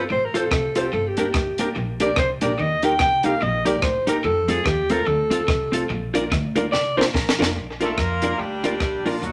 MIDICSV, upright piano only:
0, 0, Header, 1, 2, 480
1, 0, Start_track
1, 0, Key_signature, -2, "major"
1, 0, Tempo, 414651
1, 1078, Time_signature, 4, 2, 24, 8
1, 10790, End_track
2, 0, Start_track
2, 0, Title_t, "Upright piano"
2, 0, Program_c, 0, 0
2, 405, Note_on_c, 0, 60, 93
2, 409, Note_on_c, 0, 65, 77
2, 413, Note_on_c, 0, 69, 84
2, 417, Note_on_c, 0, 72, 96
2, 533, Note_off_c, 0, 60, 0
2, 535, Note_off_c, 0, 65, 0
2, 537, Note_off_c, 0, 69, 0
2, 539, Note_off_c, 0, 72, 0
2, 880, Note_on_c, 0, 60, 95
2, 887, Note_on_c, 0, 65, 86
2, 892, Note_on_c, 0, 69, 91
2, 895, Note_on_c, 0, 72, 118
2, 1010, Note_off_c, 0, 60, 0
2, 1014, Note_off_c, 0, 65, 0
2, 1016, Note_off_c, 0, 69, 0
2, 1018, Note_off_c, 0, 72, 0
2, 1366, Note_on_c, 0, 58, 96
2, 1367, Note_on_c, 0, 62, 90
2, 1373, Note_on_c, 0, 67, 87
2, 1377, Note_on_c, 0, 70, 100
2, 1493, Note_off_c, 0, 58, 0
2, 1494, Note_off_c, 0, 62, 0
2, 1496, Note_off_c, 0, 67, 0
2, 1499, Note_off_c, 0, 70, 0
2, 1836, Note_on_c, 0, 58, 106
2, 1840, Note_on_c, 0, 62, 89
2, 1847, Note_on_c, 0, 67, 95
2, 1852, Note_on_c, 0, 70, 108
2, 1968, Note_off_c, 0, 58, 0
2, 1970, Note_off_c, 0, 62, 0
2, 1973, Note_off_c, 0, 67, 0
2, 1976, Note_off_c, 0, 70, 0
2, 2319, Note_on_c, 0, 58, 88
2, 2324, Note_on_c, 0, 62, 90
2, 2328, Note_on_c, 0, 67, 83
2, 2331, Note_on_c, 0, 70, 98
2, 2449, Note_off_c, 0, 58, 0
2, 2452, Note_off_c, 0, 62, 0
2, 2454, Note_off_c, 0, 67, 0
2, 2456, Note_off_c, 0, 70, 0
2, 2795, Note_on_c, 0, 58, 101
2, 2799, Note_on_c, 0, 62, 87
2, 2803, Note_on_c, 0, 67, 93
2, 2810, Note_on_c, 0, 70, 109
2, 2927, Note_off_c, 0, 58, 0
2, 2929, Note_off_c, 0, 62, 0
2, 2931, Note_off_c, 0, 67, 0
2, 2935, Note_off_c, 0, 70, 0
2, 3278, Note_on_c, 0, 58, 90
2, 3281, Note_on_c, 0, 63, 85
2, 3285, Note_on_c, 0, 67, 80
2, 3292, Note_on_c, 0, 70, 105
2, 3409, Note_off_c, 0, 58, 0
2, 3410, Note_off_c, 0, 63, 0
2, 3412, Note_off_c, 0, 67, 0
2, 3416, Note_off_c, 0, 70, 0
2, 3761, Note_on_c, 0, 58, 104
2, 3764, Note_on_c, 0, 63, 94
2, 3769, Note_on_c, 0, 67, 99
2, 3774, Note_on_c, 0, 70, 110
2, 3890, Note_off_c, 0, 58, 0
2, 3892, Note_off_c, 0, 63, 0
2, 3894, Note_off_c, 0, 67, 0
2, 3896, Note_off_c, 0, 70, 0
2, 4236, Note_on_c, 0, 58, 102
2, 4243, Note_on_c, 0, 63, 82
2, 4248, Note_on_c, 0, 67, 84
2, 4250, Note_on_c, 0, 70, 110
2, 4368, Note_off_c, 0, 58, 0
2, 4371, Note_off_c, 0, 63, 0
2, 4373, Note_off_c, 0, 67, 0
2, 4374, Note_off_c, 0, 70, 0
2, 4716, Note_on_c, 0, 58, 99
2, 4719, Note_on_c, 0, 63, 96
2, 4725, Note_on_c, 0, 67, 99
2, 4731, Note_on_c, 0, 70, 119
2, 4847, Note_off_c, 0, 58, 0
2, 4849, Note_off_c, 0, 63, 0
2, 4852, Note_off_c, 0, 67, 0
2, 4855, Note_off_c, 0, 70, 0
2, 5187, Note_on_c, 0, 57, 98
2, 5193, Note_on_c, 0, 60, 92
2, 5194, Note_on_c, 0, 65, 91
2, 5199, Note_on_c, 0, 69, 103
2, 5323, Note_off_c, 0, 57, 0
2, 5325, Note_off_c, 0, 60, 0
2, 5326, Note_off_c, 0, 65, 0
2, 5329, Note_off_c, 0, 69, 0
2, 5670, Note_on_c, 0, 57, 103
2, 5675, Note_on_c, 0, 60, 92
2, 5678, Note_on_c, 0, 65, 91
2, 5685, Note_on_c, 0, 69, 117
2, 5804, Note_off_c, 0, 57, 0
2, 5806, Note_off_c, 0, 60, 0
2, 5808, Note_off_c, 0, 65, 0
2, 5811, Note_off_c, 0, 69, 0
2, 6151, Note_on_c, 0, 57, 97
2, 6157, Note_on_c, 0, 60, 84
2, 6159, Note_on_c, 0, 65, 83
2, 6166, Note_on_c, 0, 69, 106
2, 6284, Note_off_c, 0, 57, 0
2, 6287, Note_off_c, 0, 60, 0
2, 6288, Note_off_c, 0, 65, 0
2, 6292, Note_off_c, 0, 69, 0
2, 6627, Note_on_c, 0, 57, 98
2, 6635, Note_on_c, 0, 60, 104
2, 6640, Note_on_c, 0, 65, 96
2, 6644, Note_on_c, 0, 69, 125
2, 6762, Note_off_c, 0, 57, 0
2, 6766, Note_off_c, 0, 60, 0
2, 6768, Note_off_c, 0, 65, 0
2, 6770, Note_off_c, 0, 69, 0
2, 7111, Note_on_c, 0, 58, 103
2, 7119, Note_on_c, 0, 62, 93
2, 7120, Note_on_c, 0, 65, 91
2, 7126, Note_on_c, 0, 70, 104
2, 7244, Note_off_c, 0, 58, 0
2, 7248, Note_off_c, 0, 62, 0
2, 7248, Note_off_c, 0, 65, 0
2, 7251, Note_off_c, 0, 70, 0
2, 7591, Note_on_c, 0, 58, 97
2, 7597, Note_on_c, 0, 62, 91
2, 7603, Note_on_c, 0, 65, 85
2, 7604, Note_on_c, 0, 70, 107
2, 7724, Note_off_c, 0, 58, 0
2, 7727, Note_off_c, 0, 62, 0
2, 7730, Note_off_c, 0, 65, 0
2, 7730, Note_off_c, 0, 70, 0
2, 8068, Note_on_c, 0, 58, 95
2, 8076, Note_on_c, 0, 62, 84
2, 8078, Note_on_c, 0, 65, 87
2, 8084, Note_on_c, 0, 70, 105
2, 8202, Note_off_c, 0, 58, 0
2, 8207, Note_off_c, 0, 62, 0
2, 8208, Note_off_c, 0, 65, 0
2, 8211, Note_off_c, 0, 70, 0
2, 8547, Note_on_c, 0, 58, 114
2, 8555, Note_on_c, 0, 62, 100
2, 8557, Note_on_c, 0, 65, 98
2, 8565, Note_on_c, 0, 70, 117
2, 8682, Note_off_c, 0, 58, 0
2, 8686, Note_off_c, 0, 62, 0
2, 8687, Note_off_c, 0, 65, 0
2, 8691, Note_off_c, 0, 70, 0
2, 9037, Note_on_c, 0, 58, 88
2, 9043, Note_on_c, 0, 62, 80
2, 9047, Note_on_c, 0, 65, 85
2, 9052, Note_on_c, 0, 70, 96
2, 9168, Note_off_c, 0, 58, 0
2, 9171, Note_off_c, 0, 62, 0
2, 9173, Note_off_c, 0, 65, 0
2, 9175, Note_off_c, 0, 70, 0
2, 9518, Note_on_c, 0, 58, 93
2, 9526, Note_on_c, 0, 62, 82
2, 9531, Note_on_c, 0, 65, 87
2, 9535, Note_on_c, 0, 70, 101
2, 9649, Note_off_c, 0, 58, 0
2, 9653, Note_off_c, 0, 62, 0
2, 9655, Note_off_c, 0, 65, 0
2, 9657, Note_off_c, 0, 70, 0
2, 9995, Note_on_c, 0, 58, 81
2, 9998, Note_on_c, 0, 62, 80
2, 10006, Note_on_c, 0, 65, 75
2, 10011, Note_on_c, 0, 70, 87
2, 10128, Note_off_c, 0, 58, 0
2, 10129, Note_off_c, 0, 62, 0
2, 10133, Note_off_c, 0, 65, 0
2, 10136, Note_off_c, 0, 70, 0
2, 10477, Note_on_c, 0, 58, 92
2, 10483, Note_on_c, 0, 62, 84
2, 10487, Note_on_c, 0, 65, 82
2, 10492, Note_on_c, 0, 70, 105
2, 10609, Note_off_c, 0, 58, 0
2, 10613, Note_off_c, 0, 62, 0
2, 10615, Note_off_c, 0, 65, 0
2, 10617, Note_off_c, 0, 70, 0
2, 10790, End_track
0, 0, End_of_file